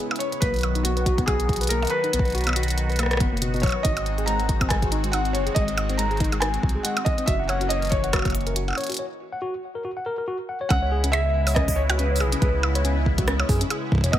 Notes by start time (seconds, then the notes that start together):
Already playing: C#3 G#3 B3 E4 B4
0.11 percussion blips
0.16 C#5, closed hi-hat
0.20 closed hi-hat
0.32 C#5, closed hi-hat
0.40 B1 D#3 F#3 A#3 F#4 B4, kick, closed hi-hat
0.54 closed hi-hat
0.56 closed hi-hat
0.59 closed hi-hat
0.61 closed hi-hat
0.63 closed hi-hat, percussion blips
0.75 D#4, closed hi-hat
0.83 B3 F#4, closed hi-hat
0.97 B4, closed hi-hat
1.06 F#4, kick, closed hi-hat
1.18 B3, kick, closed hi-hat
1.26 F#4 G#4, kick, closed hi-hat, percussion blips
1.40 closed hi-hat
1.49 kick, closed hi-hat
1.53 closed hi-hat
1.56 closed hi-hat
1.61 B4, closed hi-hat
1.63 closed hi-hat
1.67 A#4, closed hi-hat
1.70 A#3, closed hi-hat
1.82 closed hi-hat, percussion blips
1.85 closed hi-hat
1.87 closed hi-hat
1.90 B4, closed hi-hat
2.04 D#4, closed hi-hat
2.13 B1 B3, closed hi-hat
2.19 kick
2.25 B4, closed hi-hat
2.28 closed hi-hat
2.30 closed hi-hat
2.32 F#4, closed hi-hat
2.35 closed hi-hat
2.38 closed hi-hat
2.41 closed hi-hat
2.44 B3, closed hi-hat
2.47 closed hi-hat, percussion blips
2.49 percussion blips
2.56 F#4, closed hi-hat
2.63 closed hi-hat
2.68 closed hi-hat
2.70 closed hi-hat
2.78 closed hi-hat
2.90 B4, closed hi-hat
2.92 closed hi-hat
2.96 A#3, cross-stick, closed hi-hat
2.99 closed hi-hat, percussion blips
3.03 cross-stick
3.06 cross-stick
3.11 cross-stick, closed hi-hat
3.13 cross-stick
3.17 F#1 B3, kick, cross-stick, closed hi-hat
3.32 F#1 A#3
3.37 closed hi-hat
3.42 B2, closed hi-hat
3.54 B2, closed hi-hat
3.56 closed hi-hat
3.60 F#3 C#5, kick, closed hi-hat
3.63 closed hi-hat, percussion blips
3.66 closed hi-hat, percussion blips
3.69 closed hi-hat, percussion blips
3.72 B4, percussion blips
3.83 G#1 D#3 G#3 C4 D#4 D#5, kick, closed hi-hat
3.97 closed hi-hat, percussion blips
4.06 closed hi-hat
4.18 G#4, closed hi-hat
4.26 G#3 A#5, closed hi-hat
4.40 closed hi-hat
4.49 kick, closed hi-hat
4.61 C4, kick, closed hi-hat, percussion blips
4.69 G#3 G#5, kick, cross-stick, closed hi-hat
4.82 G#4, kick, closed hi-hat
4.92 D#4, closed hi-hat
5.04 G#3, closed hi-hat
5.12 D#4 F#5, closed hi-hat, percussion blips
5.25 closed hi-hat
5.33 F#1 C#5, closed hi-hat
5.47 G#4, closed hi-hat
5.55 G#1 G#3 D#5, kick, closed hi-hat
5.68 closed hi-hat
5.78 closed hi-hat, percussion blips
5.90 C4, closed hi-hat
5.98 G#3 A#5, closed hi-hat
6.11 G#4, closed hi-hat
6.17 closed hi-hat
6.20 D#4, kick, closed hi-hat
6.24 closed hi-hat
6.32 G#3, closed hi-hat, percussion blips
6.40 D#4 G#5, cross-stick, closed hi-hat
6.54 closed hi-hat
6.63 C2, kick
6.69 closed hi-hat
6.75 G#4
6.83 G#3 F#5, closed hi-hat
6.97 closed hi-hat, percussion blips
7.05 D#5, kick, closed hi-hat
7.18 C4, closed hi-hat
7.26 F#1 E3 A#3 C#4 F#4 E5, kick, closed hi-hat
7.40 F#5
7.48 C#5 F#5, closed hi-hat, percussion blips
7.61 F#4, closed hi-hat
7.69 C#5 D#5, closed hi-hat
7.82 closed hi-hat
7.85 closed hi-hat
7.87 closed hi-hat
7.89 C#5, closed hi-hat
7.92 kick, closed hi-hat
8.04 F#5, closed hi-hat
8.13 F#4, kick, cross-stick, closed hi-hat, percussion blips
8.16 percussion blips
8.19 percussion blips
8.22 closed hi-hat, percussion blips
8.25 kick, percussion blips
8.28 closed hi-hat, percussion blips
8.30 percussion blips
8.32 closed hi-hat, percussion blips
8.41 closed hi-hat
8.47 A#4, closed hi-hat
8.56 F#4, closed hi-hat
8.68 F#5, closed hi-hat, percussion blips
8.71 percussion blips
8.73 percussion blips
8.75 C#5, closed hi-hat, percussion blips
8.81 closed hi-hat
8.84 closed hi-hat
8.87 F#4, closed hi-hat
8.90 closed hi-hat
8.92 closed hi-hat
8.94 closed hi-hat
8.97 C#5, closed hi-hat
9.32 F#5
9.42 F#4
9.75 A#4
9.85 F#4
9.97 F#5
10.06 A#4
10.18 A#4
10.28 F#4
10.49 F#5
10.61 C#5
10.69 C#2 C#3 G#3 B3 C#4 E4 F#5, kick, closed hi-hat, percussion blips
10.82 C#5
10.92 G#4
11.04 C#4, closed hi-hat
11.12 G#4 E5, closed hi-hat, percussion blips
11.47 C#5, open hi-hat, percussion blips
11.55 C#4 D#5, kick, cross-stick, closed hi-hat
11.68 kick, open hi-hat
11.76 C#5
11.90 F#4 C#5, closed hi-hat, percussion blips
11.97 C#4 B4, closed hi-hat
12.11 C#5
12.16 open hi-hat
12.20 B1 G#4, percussion blips
12.32 C#4, closed hi-hat
12.40 C#2 G#4 B4, kick, closed hi-hat
12.63 percussion blips
12.75 C#5, closed hi-hat
12.85 C#4, closed hi-hat
13.06 kick
13.18 F#4, kick, closed hi-hat
13.28 C#4, cross-stick, closed hi-hat
13.40 C#5, percussion blips
13.49 F#2 G#4, kick, open hi-hat
13.61 C#4, closed hi-hat
13.70 G#4, closed hi-hat, percussion blips
13.92 kick
13.95 kick
13.98 kick
14.01 C#5, kick, closed hi-hat
14.04 kick
14.06 kick
14.09 kick
14.11 B1 D#3 A#3 B3 F#4 D#5, kick, closed hi-hat, percussion blips
14.13 B3, kick